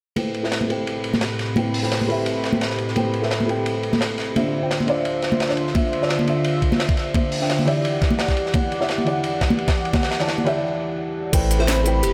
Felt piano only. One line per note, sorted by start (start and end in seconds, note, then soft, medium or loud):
0.16 0.41 A3 medium
0.16 0.41 E4 medium
0.16 0.41 B4 medium
0.16 0.42 C5 medium
0.16 0.42 G5 medium
0.43 0.66 A3 medium
0.43 0.67 E4 medium
0.43 0.67 B4 medium
0.43 0.68 C5 medium
0.43 0.68 E5 medium
0.68 1.54 A3 medium
0.68 1.54 E4 medium
0.68 1.55 B4 medium
0.68 1.55 C5 medium
0.68 1.55 G5 medium
1.56 1.81 A3 medium
1.56 1.81 E4 medium
1.56 1.81 B4 medium
1.56 1.81 C5 medium
1.56 1.81 G5 medium
1.82 2.06 A3 medium
1.82 2.07 E4 medium
1.82 2.07 B4 medium
1.82 2.07 C5 medium
1.82 2.07 G5 medium
2.07 2.93 A3 medium
2.07 2.94 E4 medium
2.07 2.94 B4 medium
2.07 2.95 C5 medium
2.07 2.95 E5 loud
2.95 3.20 A3 medium
2.95 3.20 E4 medium
2.95 3.21 B4 medium
2.95 3.21 C5 medium
2.95 3.21 G5 medium
3.22 3.45 A3 medium
3.22 3.46 E4 medium
3.22 3.46 B4 medium
3.22 3.47 C5 medium
3.22 3.47 E5 medium
3.46 4.33 A3 medium
3.46 4.33 E4 medium
3.46 4.34 B4 medium
3.46 4.34 C5 medium
3.46 4.34 G5 medium
4.35 4.60 D3 medium
4.35 4.60 D4 medium
4.35 4.60 F4 medium
4.35 4.60 C5 medium
4.35 4.61 E5 medium
4.61 4.85 D3 medium
4.61 4.86 D4 medium
4.61 4.86 F4 medium
4.61 4.86 C5 medium
4.61 4.86 G5 medium
4.86 5.47 D3 medium
4.86 5.47 D4 medium
4.86 5.48 F4 medium
4.86 5.48 C5 medium
4.86 5.49 D5 loud
5.48 5.73 D3 medium
5.48 5.73 D4 medium
5.48 5.73 F4 medium
5.48 5.73 C5 medium
5.48 5.74 D5 medium
5.74 5.99 D3 medium
5.74 5.99 D4 medium
5.74 6.00 F4 medium
5.74 6.00 C5 medium
5.74 6.00 E5 medium
6.01 6.24 D3 medium
6.01 6.25 D4 medium
6.01 6.25 F4 medium
6.01 6.26 C5 medium
6.01 6.26 D5 medium
6.26 7.12 D3 medium
6.26 7.12 D4 medium
6.26 7.13 F4 medium
6.26 7.13 C5 medium
6.26 7.13 E5 medium
7.14 7.39 D3 medium
7.14 7.39 D4 medium
7.14 7.39 F4 medium
7.14 7.39 C5 medium
7.14 7.39 E5 medium
7.40 7.65 D3 medium
7.40 7.65 D4 medium
7.40 7.65 F4 medium
7.40 7.65 C5 medium
7.40 7.65 G5 medium
7.65 8.51 E3 medium
7.65 8.52 E4 medium
7.65 8.52 G4 medium
7.65 8.53 D5 medium
7.65 8.53 E5 loud
8.54 8.78 E3 medium
8.54 8.79 E4 medium
8.54 8.79 G4 medium
8.54 8.79 D5 medium
8.54 8.79 F#5 medium
8.80 9.03 E3 medium
8.80 9.04 E4 medium
8.80 9.04 G4 medium
8.80 9.05 D5 medium
8.80 9.05 E5 medium
9.05 9.91 E3 medium
9.05 9.91 E4 medium
9.05 9.92 G4 medium
9.05 9.92 D5 medium
9.05 9.93 F#5 medium
9.93 10.18 E3 medium
9.93 10.18 E4 medium
9.93 10.18 G4 medium
9.93 10.18 D5 medium
9.93 10.19 F#5 medium
10.19 10.43 E3 medium
10.19 10.43 E4 medium
10.19 10.44 G4 medium
10.19 10.44 D5 medium
10.19 10.44 A5 medium
10.44 10.62 E3 loud
10.44 10.63 E4 medium
10.44 10.63 G4 medium
10.44 10.64 D5 medium
10.44 10.64 E5 loud
11.32 11.57 A3 medium
11.32 11.57 E4 medium
11.32 11.58 B4 medium
11.32 11.58 C5 medium
11.32 11.58 G5 medium
11.59 11.82 A3 medium
11.59 11.83 E4 medium
11.59 11.84 B4 medium
11.59 11.84 C5 medium
11.59 11.84 E5 medium
11.84 12.13 A3 medium
11.84 12.13 E4 medium
11.84 12.13 B4 medium
11.84 12.13 C5 medium
11.84 12.13 G5 medium